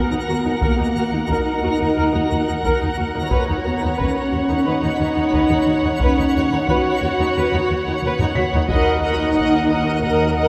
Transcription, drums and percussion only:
0.61 taiko
1.29 taiko
2.63 taiko
3.31 taiko
3.99 taiko
5.33 taiko
6.00 taiko
6.68 taiko
8.03 taiko mid
8.19 taiko low-mid
8.36 taiko mid
8.53 taiko low
8.70 taiko
9.38 taiko

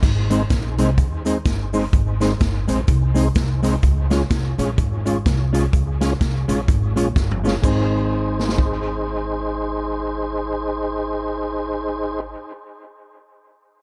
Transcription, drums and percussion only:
0.03 kick, crash, cabasa
0.30 closed hi-hat, cabasa
0.50 kick, snare, closed hi-hat, cabasa
0.78 closed hi-hat, cabasa
0.98 kick, closed hi-hat, cabasa
1.26 closed hi-hat, cabasa
1.45 kick, snare, closed hi-hat, cabasa
1.74 open hi-hat, cabasa
1.93 kick, closed hi-hat, cabasa
2.21 snare, closed hi-hat, cabasa
2.40 kick, snare, closed hi-hat, cabasa
2.68 closed hi-hat, cabasa
2.88 kick, closed hi-hat, cabasa
3.15 closed hi-hat, cabasa
3.35 kick, snare, closed hi-hat, cabasa
3.63 closed hi-hat, cabasa
3.83 kick, closed hi-hat, cabasa
4.11 snare, closed hi-hat, cabasa
4.31 kick, snare, closed hi-hat, cabasa
4.59 closed hi-hat, cabasa
4.78 kick, closed hi-hat, cabasa
5.06 closed hi-hat, cabasa
5.26 kick, snare, closed hi-hat, cabasa
5.54 closed hi-hat, cabasa
5.73 kick, closed hi-hat, cabasa
6.01 snare, closed hi-hat, cabasa
6.21 kick, snare, closed hi-hat, cabasa
6.49 closed hi-hat, cabasa
6.68 kick, closed hi-hat, cabasa
6.97 closed hi-hat, cabasa
7.16 kick, snare, cabasa
7.31 mid tom
7.45 snare, cabasa
7.63 kick, crash, cabasa
8.39 snare
8.49 snare
8.58 kick

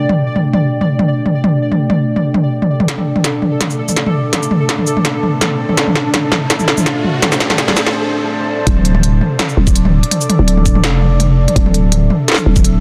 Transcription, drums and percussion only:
0.09 mid tom
0.36 mid tom
0.53 mid tom
0.81 mid tom
0.99 mid tom
1.26 mid tom
1.44 mid tom
1.72 mid tom
1.90 mid tom
2.16 mid tom
2.34 mid tom
2.62 mid tom
2.80 mid tom
2.88 snare, closed hi-hat
2.98 mid tom
3.16 mid tom
3.24 snare, closed hi-hat
3.42 mid tom
3.61 snare, closed hi-hat, mid tom
3.70 shaker
3.89 mid tom, shaker
3.96 snare, closed hi-hat
4.06 mid tom
4.33 snare, closed hi-hat, mid tom
4.43 shaker
4.51 mid tom
4.69 snare, closed hi-hat
4.79 mid tom
4.87 shaker
4.97 mid tom
5.05 snare, closed hi-hat
5.23 mid tom
5.41 snare, closed hi-hat, mid tom
5.69 mid tom
5.77 snare, closed hi-hat
5.87 mid tom
5.95 snare
6.14 snare, closed hi-hat, mid tom
6.32 snare, mid tom
6.50 snare, closed hi-hat
6.60 mid tom, shaker
6.68 snare
6.77 mid tom, shaker
6.86 snare, closed hi-hat
7.04 mid tom
7.22 snare, closed hi-hat, mid tom
7.32 snare, shaker
7.40 snare, closed hi-hat
7.50 snare, mid tom
7.58 snare, closed hi-hat
7.68 snare, mid tom
7.71 mid tom
7.74 snare, mid tom, shaker
7.87 snare
8.67 kick, closed hi-hat
8.77 mid tom
8.85 closed hi-hat
8.95 mid tom
9.03 closed hi-hat
9.21 mid tom
9.39 snare, closed hi-hat, mid tom
9.49 shaker
9.67 kick, mid tom, shaker
9.76 closed hi-hat
9.85 mid tom
10.03 closed hi-hat
10.11 closed hi-hat, mid tom
10.21 shaker
10.30 closed hi-hat, mid tom
10.48 closed hi-hat
10.57 mid tom
10.66 kick, shaker
10.75 mid tom
10.84 snare, closed hi-hat
11.02 mid tom
11.20 closed hi-hat, mid tom
11.48 closed hi-hat, mid tom
11.56 kick, closed hi-hat
11.66 mid tom
11.74 closed hi-hat
11.92 closed hi-hat, mid tom
12.10 mid tom
12.28 snare, closed hi-hat
12.32 snare
12.34 snare, mid tom, shaker
12.56 kick, mid tom, shaker
12.64 closed hi-hat

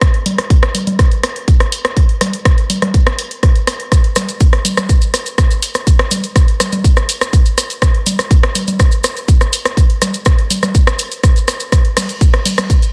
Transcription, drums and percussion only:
0.01 kick, cross-stick, closed hi-hat
0.14 closed hi-hat
0.26 open hi-hat, low conga
0.38 cross-stick, closed hi-hat
0.50 kick, closed hi-hat
0.63 cross-stick, closed hi-hat
0.75 open hi-hat, low conga
0.87 closed hi-hat, low conga
0.99 kick, cross-stick, closed hi-hat
1.12 closed hi-hat
1.23 cross-stick, open hi-hat
1.36 closed hi-hat
1.48 kick, closed hi-hat
1.60 cross-stick, closed hi-hat
1.72 open hi-hat
1.85 cross-stick, closed hi-hat
1.97 kick, closed hi-hat
2.09 closed hi-hat
2.21 cross-stick, open hi-hat, low conga
2.33 closed hi-hat
2.45 kick, cross-stick, closed hi-hat
2.58 closed hi-hat
2.70 open hi-hat, low conga
2.82 cross-stick, closed hi-hat, low conga
2.94 kick, closed hi-hat
3.07 cross-stick, closed hi-hat
3.19 open hi-hat
3.31 closed hi-hat
3.43 kick, cross-stick, closed hi-hat
3.56 closed hi-hat
3.67 cross-stick, open hi-hat
3.80 closed hi-hat
3.92 kick, cross-stick, closed hi-hat, maracas
4.04 closed hi-hat
4.16 cross-stick, open hi-hat, low conga, maracas
4.29 closed hi-hat, maracas
4.40 kick, closed hi-hat, maracas
4.53 cross-stick, closed hi-hat
4.65 open hi-hat, low conga, maracas
4.77 cross-stick, closed hi-hat, low conga, maracas
4.89 kick, closed hi-hat, maracas
5.01 closed hi-hat, maracas
5.14 cross-stick, open hi-hat, maracas
5.26 closed hi-hat, maracas
5.38 kick, cross-stick, closed hi-hat, maracas
5.51 closed hi-hat, maracas
5.62 open hi-hat, maracas
5.75 cross-stick, closed hi-hat, maracas
5.87 kick, closed hi-hat, maracas
5.99 cross-stick, closed hi-hat
6.11 open hi-hat, low conga, maracas
6.24 closed hi-hat, maracas
6.36 kick, cross-stick, closed hi-hat, maracas
6.48 closed hi-hat
6.60 cross-stick, open hi-hat, low conga, maracas
6.72 closed hi-hat, low conga, maracas
6.84 kick, closed hi-hat, maracas
6.97 cross-stick, closed hi-hat, maracas
7.09 open hi-hat, maracas
7.21 cross-stick, closed hi-hat, maracas
7.33 kick, closed hi-hat, maracas
7.46 closed hi-hat, maracas
7.58 cross-stick, open hi-hat, maracas
7.70 closed hi-hat, maracas
7.82 kick, cross-stick, closed hi-hat, maracas
7.95 closed hi-hat
8.06 open hi-hat, low conga, maracas
8.19 cross-stick, closed hi-hat, maracas
8.31 kick, closed hi-hat, maracas
8.43 cross-stick, closed hi-hat
8.55 open hi-hat, low conga, maracas
8.68 closed hi-hat, low conga, maracas
8.80 kick, cross-stick, closed hi-hat, maracas
8.91 closed hi-hat, maracas
9.04 cross-stick, open hi-hat, maracas
9.17 closed hi-hat, maracas
9.28 kick, closed hi-hat, maracas
9.41 cross-stick, closed hi-hat, maracas
9.53 open hi-hat, maracas
9.65 cross-stick, closed hi-hat, maracas
9.77 kick, closed hi-hat, maracas
9.90 closed hi-hat
10.02 cross-stick, open hi-hat, low conga, maracas
10.14 closed hi-hat, maracas
10.25 kick, cross-stick, closed hi-hat, maracas
10.39 closed hi-hat
10.50 open hi-hat, low conga, maracas
10.63 cross-stick, closed hi-hat, low conga, maracas
10.75 kick, closed hi-hat, maracas
10.87 cross-stick, closed hi-hat, maracas
10.99 open hi-hat, maracas
11.12 closed hi-hat, maracas
11.23 kick, cross-stick, closed hi-hat, maracas
11.36 closed hi-hat, maracas
11.48 cross-stick, open hi-hat, maracas
11.60 closed hi-hat, maracas
11.72 kick, cross-stick, closed hi-hat, maracas
11.85 closed hi-hat
11.97 cross-stick, open hi-hat, ride, low conga, maracas
12.09 closed hi-hat, maracas
12.21 kick, closed hi-hat, maracas
12.34 cross-stick, closed hi-hat
12.45 open hi-hat, ride, low conga, maracas
12.58 cross-stick, closed hi-hat, low conga, maracas
12.70 kick, closed hi-hat, maracas
12.82 closed hi-hat, maracas

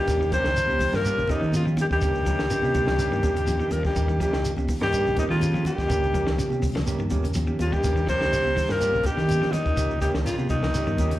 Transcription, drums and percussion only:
0.07 kick, closed hi-hat, high conga, shekere
0.22 shekere
0.32 kick, closed hi-hat, shekere
0.44 snare, shekere
0.56 closed hi-hat, high conga, shekere
0.67 high conga, shekere
0.79 kick, open hi-hat, high conga, low conga, shekere
0.93 snare, shekere
1.04 closed hi-hat, high conga, shekere
1.19 shekere
1.28 kick, closed hi-hat, high conga, shekere
1.43 shekere
1.52 closed hi-hat, high conga, shekere
1.67 shekere
1.77 closed hi-hat, high conga, low conga, shekere
1.91 kick, shekere
2.01 kick, closed hi-hat, high conga, shekere
2.15 shekere
2.26 kick, closed hi-hat, shekere
2.39 snare, shekere
2.50 closed hi-hat, high conga, shekere
2.62 high conga, shekere
2.74 kick, closed hi-hat, low conga, shekere
2.87 snare, shekere
2.99 closed hi-hat, high conga, shekere
3.11 high conga, shekere
3.23 kick, closed hi-hat, high conga, shekere
3.36 closed hi-hat, shekere
3.47 closed hi-hat, high conga, shekere
3.60 shekere
3.71 closed hi-hat, high conga, low conga, shekere
3.84 kick, snare, shekere
3.96 kick, closed hi-hat, high conga, low conga, shekere
4.09 shekere
4.21 kick, closed hi-hat, shekere
4.33 snare, shekere
4.45 closed hi-hat, high conga, shekere
4.57 high conga, shekere
4.68 kick, open hi-hat, low conga, shekere
4.82 snare, shekere
4.92 closed hi-hat, high conga, shekere
5.07 shekere
5.17 kick, closed hi-hat, high conga, low conga, shekere
5.32 shekere
5.40 closed hi-hat, high conga, shekere
5.55 shekere
5.65 closed hi-hat, high conga, low conga, shekere
5.78 kick, snare, shekere
5.89 kick, closed hi-hat, high conga, shekere
6.03 shekere
6.14 kick, closed hi-hat, shekere
6.27 snare, shekere
6.37 closed hi-hat, high conga, shekere
6.50 high conga, shekere
6.62 kick, open hi-hat, low conga, shekere
6.76 snare, shekere
6.87 closed hi-hat, shekere
6.99 high conga, shekere
7.10 kick, closed hi-hat, high conga, shekere
7.23 closed hi-hat, shekere
7.34 closed hi-hat, high conga, shekere
7.47 shekere
7.59 closed hi-hat, high conga, low conga, shekere
7.73 kick, shekere
7.84 kick, closed hi-hat, high conga, low conga, shekere
7.97 shekere
8.08 kick, closed hi-hat, shekere
8.22 snare, shekere
8.33 snare, closed hi-hat, high conga, shekere
8.45 high conga, shekere
8.56 kick, open hi-hat, low conga, shekere
8.69 snare, shekere
8.80 closed hi-hat, shekere
8.92 high conga, shekere
9.03 kick, closed hi-hat, high conga, shekere
9.17 snare, shekere
9.28 closed hi-hat, high conga, shekere
9.42 snare, shekere
9.53 closed hi-hat, high conga, low conga, shekere
9.66 kick, shekere
9.77 kick, closed hi-hat, high conga, shekere
9.91 shekere
10.01 kick, closed hi-hat, shekere
10.14 snare, shekere
10.26 snare, closed hi-hat, high conga, shekere
10.38 high conga, shekere
10.49 kick, closed hi-hat, low conga, shekere
10.63 snare, shekere
10.74 snare, closed hi-hat, shekere
10.87 high conga, shekere
10.98 kick, closed hi-hat, high conga, shekere
11.11 closed hi-hat, shekere

